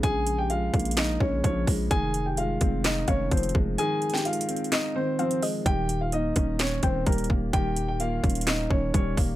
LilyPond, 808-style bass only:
\new Staff \with { instrumentName = "808-style bass" } { \clef bass \time 4/4 \key f \minor \tempo 4 = 128 bes,,4. bes,,4 bes,,8 bes,,8 bes,,8 | f,,4. f,,4 f,,8 f,,8 f,,8 | r1 | ees,,4. ees,,4 ees,,8 ees,,8 ees,,8 |
ees,,4. ees,,4 ees,,8 ees,,8 ees,,8 | }